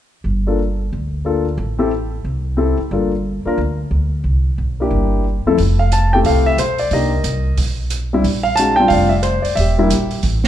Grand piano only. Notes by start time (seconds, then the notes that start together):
0.47 A#3 D4 F4 A4
1.25 A#3 D4 F4 A4
1.79 C4 E4 G4 A4
2.57 C4 E4 G4 A4
2.92 A#3 D4 F4 A4
3.46 A#3 D4 F4 A#4
4.80 A#3 D4 E4 G4
5.47 F2 A3 C4 E4 A4
5.79 F5
5.93 A5
6.13 A3 C4 E4 G4 G5
6.26 A4 F5
6.46 E5
6.59 C5
6.79 D5
6.92 A#3 D4 D#4 G4 A#4 D#5
8.13 G3 C4 D4 E4
8.43 F5
8.56 G#3 C#4 D#4 F#4 A5
8.76 G3 C4 G5
8.80 D4 F4
8.88 F5
8.93 D5
9.09 E5
9.23 C5
9.42 D5
9.55 E5
9.60 G4
9.78 G3 A#3 D4 E4